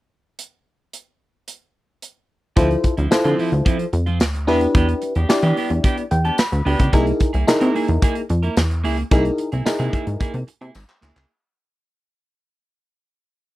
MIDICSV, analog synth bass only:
0, 0, Header, 1, 2, 480
1, 0, Start_track
1, 0, Tempo, 545455
1, 340, Time_signature, 4, 2, 24, 8
1, 11928, End_track
2, 0, Start_track
2, 0, Title_t, "Analog synth bass"
2, 0, Program_c, 0, 38
2, 2260, Note_on_c, 0, 38, 111
2, 2432, Note_off_c, 0, 38, 0
2, 2622, Note_on_c, 0, 38, 92
2, 2707, Note_off_c, 0, 38, 0
2, 2742, Note_on_c, 0, 50, 52
2, 2789, Note_off_c, 0, 50, 0
2, 2861, Note_on_c, 0, 50, 96
2, 2946, Note_off_c, 0, 50, 0
2, 3100, Note_on_c, 0, 38, 98
2, 3186, Note_off_c, 0, 38, 0
2, 3458, Note_on_c, 0, 41, 82
2, 3699, Note_on_c, 0, 38, 77
2, 3713, Note_off_c, 0, 41, 0
2, 3938, Note_on_c, 0, 40, 95
2, 3951, Note_off_c, 0, 38, 0
2, 4111, Note_off_c, 0, 40, 0
2, 4179, Note_on_c, 0, 40, 107
2, 4351, Note_off_c, 0, 40, 0
2, 4540, Note_on_c, 0, 40, 93
2, 4626, Note_off_c, 0, 40, 0
2, 4659, Note_on_c, 0, 52, 49
2, 4707, Note_off_c, 0, 52, 0
2, 4778, Note_on_c, 0, 52, 110
2, 4864, Note_off_c, 0, 52, 0
2, 5019, Note_on_c, 0, 40, 91
2, 5105, Note_off_c, 0, 40, 0
2, 5380, Note_on_c, 0, 40, 89
2, 5552, Note_off_c, 0, 40, 0
2, 5741, Note_on_c, 0, 38, 92
2, 5826, Note_off_c, 0, 38, 0
2, 5861, Note_on_c, 0, 38, 89
2, 5947, Note_off_c, 0, 38, 0
2, 5982, Note_on_c, 0, 37, 84
2, 6067, Note_off_c, 0, 37, 0
2, 6099, Note_on_c, 0, 36, 117
2, 6271, Note_off_c, 0, 36, 0
2, 6464, Note_on_c, 0, 36, 84
2, 6548, Note_off_c, 0, 36, 0
2, 6583, Note_on_c, 0, 48, 44
2, 6630, Note_off_c, 0, 48, 0
2, 6701, Note_on_c, 0, 48, 110
2, 6786, Note_off_c, 0, 48, 0
2, 6942, Note_on_c, 0, 40, 105
2, 7027, Note_off_c, 0, 40, 0
2, 7305, Note_on_c, 0, 41, 86
2, 7475, Note_off_c, 0, 41, 0
2, 7543, Note_on_c, 0, 40, 80
2, 7783, Note_on_c, 0, 37, 89
2, 7797, Note_off_c, 0, 40, 0
2, 7954, Note_off_c, 0, 37, 0
2, 8020, Note_on_c, 0, 36, 109
2, 8192, Note_off_c, 0, 36, 0
2, 8384, Note_on_c, 0, 36, 76
2, 8469, Note_off_c, 0, 36, 0
2, 8621, Note_on_c, 0, 48, 111
2, 8706, Note_off_c, 0, 48, 0
2, 8862, Note_on_c, 0, 44, 87
2, 8947, Note_off_c, 0, 44, 0
2, 9101, Note_on_c, 0, 48, 92
2, 9186, Note_off_c, 0, 48, 0
2, 9339, Note_on_c, 0, 48, 106
2, 9425, Note_off_c, 0, 48, 0
2, 9464, Note_on_c, 0, 32, 88
2, 9548, Note_off_c, 0, 32, 0
2, 9703, Note_on_c, 0, 38, 75
2, 9788, Note_off_c, 0, 38, 0
2, 9821, Note_on_c, 0, 37, 82
2, 9907, Note_off_c, 0, 37, 0
2, 11928, End_track
0, 0, End_of_file